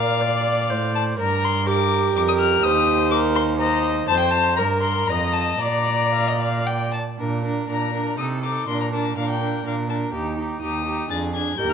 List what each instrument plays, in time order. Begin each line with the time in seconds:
Already playing: cello A#2, viola A#4, violin D5 F5
0.21 viola D5
0.70 cello A2, viola C5
0.95 violin A5
1.18 cello G2, viola A#4, violin A#4 A#5
1.45 violin C6
1.67 viola G4, violin A#4 D6
2.16 cello F2, violin A#4 D6
2.28 violin D#6
2.39 violin F6
2.63 cello D#2, violin C5 D#6
3.11 viola A#4, violin D6
3.35 violin C6
3.60 violin C5 A#5, viola D#5
4.08 cello F2, viola C5, violin C5 A5
4.20 violin G5
4.31 violin A5
4.56 cello G2, viola A#4, violin A#4 A#5
4.81 violin C6
5.07 cello F2, viola D#5, violin D#5 A#5
5.33 violin A5
5.60 cello A#2, viola D5, violin D5 A#5
6.13 violin F5
6.28 violin D#5
6.40 violin F5
6.66 violin G5
6.93 violin A5
7.18 cello A#2, viola D4, violin A#4
7.44 viola D4, violin A#4
7.68 cello A#2, viola D4, violin A#4 A#5
7.93 viola D4, violin A#4
8.18 cello C3, viola D#4, violin A4 D#6
8.43 viola D#4, violin A4 D6
8.68 cello A#2, viola D4, violin A#4 C6
8.81 violin A#5
8.92 viola D4, violin A#4 A5
9.16 cello A#2, viola D4, violin A#4 F5
9.30 violin G5
9.40 viola D4, violin A#4
9.64 cello A#2, viola D4, violin A#4 F5
9.89 viola D4, violin A#4 A5
10.13 cello D#2, viola D#4, violin G4
10.37 viola D#4, violin G4
10.61 cello D#2, viola D#4, violin G4 D#6
10.86 viola D#4, violin G4
11.10 cello F2, viola D4, violin G#4 A6
11.34 viola D4, violin G#4 G#6
11.58 cello D#2, viola G4, violin A#4 G6
11.70 violin F6